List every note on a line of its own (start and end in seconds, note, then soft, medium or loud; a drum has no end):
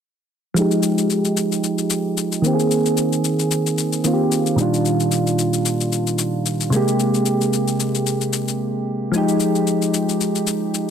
0.54 2.39 F3 medium
0.54 2.40 G#3 medium
0.54 shaker medium
0.58 2.41 D#4 medium
0.58 2.42 G4 medium
0.71 shaker soft
0.83 shaker loud
0.98 shaker medium
1.10 shaker medium
1.25 shaker medium
1.37 shaker medium
1.52 shaker medium
1.64 shaker medium
1.78 shaker medium
1.90 shaker loud
2.17 shaker medium
2.32 shaker medium
2.42 4.01 D#3 medium
2.42 4.02 A#3 medium
2.42 shaker medium
2.46 4.03 C4 medium
2.46 2.53 G4 medium
2.54 4.07 G#4 medium
2.60 shaker medium
2.71 shaker medium
2.86 shaker soft
2.97 shaker loud
3.13 shaker medium
3.24 shaker medium
3.39 shaker medium
3.51 shaker medium
3.67 shaker soft
3.78 shaker medium
3.93 shaker medium
4.04 4.56 D#3 medium
4.04 4.59 A#3 soft
4.04 4.59 C4 soft
4.04 4.13 F4 soft
4.04 shaker loud
4.14 4.63 G4 medium
4.32 shaker medium
4.46 shaker medium
4.56 6.68 A#2 medium
4.56 6.68 D#3 medium
4.56 6.69 G3 medium
4.56 shaker medium
4.61 6.70 D4 medium
4.61 6.71 F4 medium
4.74 shaker medium
4.85 shaker medium
5.00 shaker medium
5.12 shaker loud
5.27 shaker soft
5.39 shaker medium
5.54 shaker medium
5.66 shaker medium
5.81 shaker medium
5.92 shaker medium
6.07 shaker medium
6.19 shaker loud
6.46 shaker medium
6.61 shaker medium
6.70 8.82 C3 medium
6.70 8.83 G#3 medium
6.70 shaker medium
6.74 8.84 A#3 medium
6.74 8.85 G4 medium
6.88 shaker medium
7.00 shaker medium
7.14 shaker soft
7.26 shaker loud
7.41 shaker medium
7.53 shaker medium
7.68 shaker medium
7.80 shaker medium
7.95 shaker medium
8.07 shaker medium
8.21 shaker medium
8.33 shaker loud
8.48 shaker medium
9.12 10.90 F3 medium
9.12 10.90 G#3 medium
9.12 shaker medium
9.16 10.90 D#4 medium
9.16 10.90 G4 medium
9.29 shaker medium
9.40 shaker loud
9.55 shaker medium
9.67 shaker medium
9.82 shaker medium
9.94 shaker loud
10.09 shaker medium
10.21 shaker medium
10.35 shaker medium
10.47 shaker loud
10.74 shaker medium